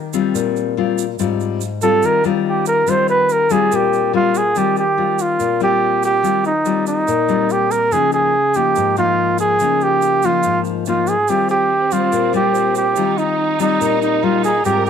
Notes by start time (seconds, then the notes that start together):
Already playing: D#3
0.13 G3 C4 F4, shaker
0.34 A#2, shaker
0.56 shaker
0.77 G3 C4 F4
0.98 shaker
1.19 G#2 G3 C4 F4, shaker
1.40 shaker
1.61 shaker
1.81 G3 C4 F4 A4, shaker
2.02 D#3 A#4, shaker
2.24 G3 C4 D#4 F4, shaker
2.48 G4
2.66 A#4, shaker
2.87 D#3 G3 C4 F4 C5, shaker
3.08 B4, shaker
3.29 A#4, shaker
3.50 G3 C4 F4 G#4, shaker
3.72 A#2 G4, shaker
3.93 shaker
4.13 G3 C4 F4
4.35 G#4, shaker
4.55 D#3 G3 C4 F4 G4, shaker
4.76 G4, shaker
4.97 G3 C4 F4
5.19 F4, shaker
5.39 A#2, shaker
5.60 G3 C4 F4 G4, shaker
6.03 G4, shaker
6.23 D#3 G3 C4 F4, shaker
6.45 D#4, shaker
6.65 G3 C4 F4, shaker
6.87 D#4, shaker
7.08 A#2, shaker
7.28 G3 C4 F4, shaker
7.50 G4, shaker
7.71 A#4, shaker
7.92 C#3 F3 A#3 D#4 G#4, shaker
8.12 G#4, shaker
8.54 F3 A#3 D#4 G4, shaker
8.76 G#2, shaker
8.96 F3 A#3 D#4 F4, shaker
9.38 G#4, shaker
9.59 C#3 F3 A#3 D#4, shaker
9.81 G4, shaker
10.02 shaker
10.22 F3 A#3 D#4 F4, shaker
10.43 G#2, shaker
10.64 shaker
10.86 F3 A#3 D#4 F4, shaker
11.07 G#4, shaker
11.28 D#3 G3 C4 F4 G4, shaker
11.49 G4, shaker
11.91 G3 C4 F4, shaker
12.12 A#2, shaker
12.33 G3 C4 F4 G4, shaker
12.55 shaker
12.75 G4, shaker
12.96 D#3 G3 C4 D#4 F4, shaker
13.18 D#4, shaker
13.60 G3 C4 D#4 F4, shaker
13.81 A#2, shaker
14.02 D#4, shaker
14.23 G3 C4 F4
14.44 G#4, shaker
14.65 G#2 G3 C4 F4 G4 A#4, shaker
14.86 G4, shaker